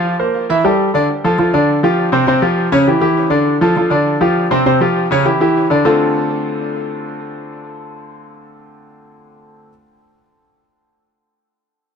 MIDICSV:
0, 0, Header, 1, 2, 480
1, 0, Start_track
1, 0, Key_signature, -1, "minor"
1, 0, Tempo, 298063
1, 1744, Time_signature, 4, 2, 24, 8
1, 19254, End_track
2, 0, Start_track
2, 0, Title_t, "Grand piano"
2, 0, Program_c, 0, 0
2, 0, Note_on_c, 0, 53, 89
2, 0, Note_on_c, 0, 65, 85
2, 0, Note_on_c, 0, 77, 83
2, 217, Note_off_c, 0, 53, 0
2, 217, Note_off_c, 0, 65, 0
2, 223, Note_off_c, 0, 77, 0
2, 313, Note_on_c, 0, 58, 75
2, 314, Note_on_c, 0, 72, 71
2, 315, Note_on_c, 0, 70, 70
2, 703, Note_off_c, 0, 58, 0
2, 703, Note_off_c, 0, 72, 0
2, 704, Note_off_c, 0, 70, 0
2, 798, Note_on_c, 0, 52, 92
2, 804, Note_on_c, 0, 64, 89
2, 806, Note_on_c, 0, 76, 90
2, 989, Note_off_c, 0, 52, 0
2, 992, Note_off_c, 0, 64, 0
2, 994, Note_off_c, 0, 76, 0
2, 1039, Note_on_c, 0, 55, 86
2, 1041, Note_on_c, 0, 67, 84
2, 1044, Note_on_c, 0, 69, 84
2, 1426, Note_off_c, 0, 55, 0
2, 1428, Note_off_c, 0, 67, 0
2, 1429, Note_off_c, 0, 69, 0
2, 1513, Note_on_c, 0, 50, 80
2, 1520, Note_on_c, 0, 62, 91
2, 1528, Note_on_c, 0, 74, 94
2, 1706, Note_off_c, 0, 50, 0
2, 1710, Note_off_c, 0, 62, 0
2, 1715, Note_off_c, 0, 74, 0
2, 2003, Note_on_c, 0, 53, 80
2, 2007, Note_on_c, 0, 69, 86
2, 2008, Note_on_c, 0, 65, 84
2, 2192, Note_off_c, 0, 53, 0
2, 2194, Note_off_c, 0, 69, 0
2, 2195, Note_off_c, 0, 65, 0
2, 2231, Note_on_c, 0, 53, 76
2, 2234, Note_on_c, 0, 65, 74
2, 2239, Note_on_c, 0, 69, 70
2, 2425, Note_off_c, 0, 53, 0
2, 2426, Note_off_c, 0, 65, 0
2, 2430, Note_off_c, 0, 69, 0
2, 2473, Note_on_c, 0, 62, 90
2, 2475, Note_on_c, 0, 50, 90
2, 2478, Note_on_c, 0, 74, 91
2, 2863, Note_off_c, 0, 62, 0
2, 2864, Note_off_c, 0, 50, 0
2, 2866, Note_off_c, 0, 74, 0
2, 2949, Note_on_c, 0, 53, 79
2, 2960, Note_on_c, 0, 65, 85
2, 2961, Note_on_c, 0, 67, 83
2, 3341, Note_off_c, 0, 53, 0
2, 3347, Note_off_c, 0, 65, 0
2, 3347, Note_off_c, 0, 67, 0
2, 3415, Note_on_c, 0, 48, 93
2, 3424, Note_on_c, 0, 60, 89
2, 3428, Note_on_c, 0, 72, 89
2, 3616, Note_off_c, 0, 48, 0
2, 3621, Note_off_c, 0, 60, 0
2, 3623, Note_off_c, 0, 72, 0
2, 3656, Note_on_c, 0, 48, 92
2, 3672, Note_on_c, 0, 60, 85
2, 3673, Note_on_c, 0, 72, 90
2, 3856, Note_off_c, 0, 48, 0
2, 3865, Note_off_c, 0, 60, 0
2, 3866, Note_off_c, 0, 72, 0
2, 3897, Note_on_c, 0, 53, 87
2, 3901, Note_on_c, 0, 65, 85
2, 3903, Note_on_c, 0, 67, 81
2, 4293, Note_off_c, 0, 53, 0
2, 4296, Note_off_c, 0, 65, 0
2, 4297, Note_off_c, 0, 67, 0
2, 4379, Note_on_c, 0, 49, 91
2, 4384, Note_on_c, 0, 61, 99
2, 4385, Note_on_c, 0, 73, 95
2, 4578, Note_off_c, 0, 49, 0
2, 4581, Note_off_c, 0, 61, 0
2, 4582, Note_off_c, 0, 73, 0
2, 4628, Note_on_c, 0, 52, 82
2, 4635, Note_on_c, 0, 67, 74
2, 4636, Note_on_c, 0, 64, 79
2, 4819, Note_off_c, 0, 52, 0
2, 4827, Note_off_c, 0, 64, 0
2, 4827, Note_off_c, 0, 67, 0
2, 4843, Note_on_c, 0, 52, 84
2, 4853, Note_on_c, 0, 64, 85
2, 4855, Note_on_c, 0, 67, 88
2, 5245, Note_off_c, 0, 52, 0
2, 5251, Note_off_c, 0, 64, 0
2, 5252, Note_off_c, 0, 67, 0
2, 5314, Note_on_c, 0, 50, 92
2, 5321, Note_on_c, 0, 74, 89
2, 5323, Note_on_c, 0, 62, 86
2, 5720, Note_off_c, 0, 50, 0
2, 5724, Note_off_c, 0, 74, 0
2, 5726, Note_off_c, 0, 62, 0
2, 5817, Note_on_c, 0, 53, 92
2, 5820, Note_on_c, 0, 65, 84
2, 5832, Note_on_c, 0, 69, 92
2, 6017, Note_off_c, 0, 53, 0
2, 6018, Note_off_c, 0, 65, 0
2, 6026, Note_off_c, 0, 69, 0
2, 6062, Note_on_c, 0, 53, 70
2, 6071, Note_on_c, 0, 69, 77
2, 6074, Note_on_c, 0, 65, 75
2, 6260, Note_off_c, 0, 53, 0
2, 6265, Note_off_c, 0, 69, 0
2, 6267, Note_off_c, 0, 65, 0
2, 6282, Note_on_c, 0, 50, 90
2, 6289, Note_on_c, 0, 62, 96
2, 6296, Note_on_c, 0, 74, 88
2, 6685, Note_off_c, 0, 50, 0
2, 6689, Note_off_c, 0, 62, 0
2, 6693, Note_off_c, 0, 74, 0
2, 6775, Note_on_c, 0, 53, 89
2, 6779, Note_on_c, 0, 65, 84
2, 6782, Note_on_c, 0, 67, 84
2, 7173, Note_off_c, 0, 53, 0
2, 7175, Note_off_c, 0, 65, 0
2, 7177, Note_off_c, 0, 67, 0
2, 7257, Note_on_c, 0, 48, 86
2, 7263, Note_on_c, 0, 60, 92
2, 7264, Note_on_c, 0, 72, 86
2, 7457, Note_off_c, 0, 48, 0
2, 7461, Note_off_c, 0, 60, 0
2, 7461, Note_off_c, 0, 72, 0
2, 7503, Note_on_c, 0, 48, 91
2, 7506, Note_on_c, 0, 60, 84
2, 7512, Note_on_c, 0, 72, 84
2, 7701, Note_off_c, 0, 48, 0
2, 7702, Note_off_c, 0, 60, 0
2, 7706, Note_off_c, 0, 72, 0
2, 7740, Note_on_c, 0, 53, 83
2, 7750, Note_on_c, 0, 65, 81
2, 7752, Note_on_c, 0, 67, 83
2, 8136, Note_off_c, 0, 53, 0
2, 8142, Note_off_c, 0, 65, 0
2, 8143, Note_off_c, 0, 67, 0
2, 8225, Note_on_c, 0, 49, 96
2, 8238, Note_on_c, 0, 61, 90
2, 8243, Note_on_c, 0, 73, 95
2, 8422, Note_off_c, 0, 49, 0
2, 8429, Note_off_c, 0, 61, 0
2, 8432, Note_off_c, 0, 73, 0
2, 8455, Note_on_c, 0, 52, 74
2, 8462, Note_on_c, 0, 64, 84
2, 8466, Note_on_c, 0, 67, 81
2, 8656, Note_off_c, 0, 52, 0
2, 8660, Note_off_c, 0, 64, 0
2, 8662, Note_off_c, 0, 67, 0
2, 8702, Note_on_c, 0, 52, 84
2, 8711, Note_on_c, 0, 64, 82
2, 8718, Note_on_c, 0, 67, 85
2, 9097, Note_off_c, 0, 52, 0
2, 9102, Note_off_c, 0, 64, 0
2, 9106, Note_off_c, 0, 67, 0
2, 9180, Note_on_c, 0, 50, 92
2, 9184, Note_on_c, 0, 62, 82
2, 9195, Note_on_c, 0, 74, 92
2, 9379, Note_off_c, 0, 50, 0
2, 9381, Note_off_c, 0, 62, 0
2, 9388, Note_off_c, 0, 74, 0
2, 9415, Note_on_c, 0, 50, 92
2, 9421, Note_on_c, 0, 57, 85
2, 9421, Note_on_c, 0, 60, 82
2, 9425, Note_on_c, 0, 65, 84
2, 9427, Note_on_c, 0, 69, 98
2, 9430, Note_on_c, 0, 62, 80
2, 15612, Note_off_c, 0, 50, 0
2, 15615, Note_off_c, 0, 57, 0
2, 15615, Note_off_c, 0, 60, 0
2, 15617, Note_off_c, 0, 65, 0
2, 15618, Note_off_c, 0, 69, 0
2, 15619, Note_off_c, 0, 62, 0
2, 19254, End_track
0, 0, End_of_file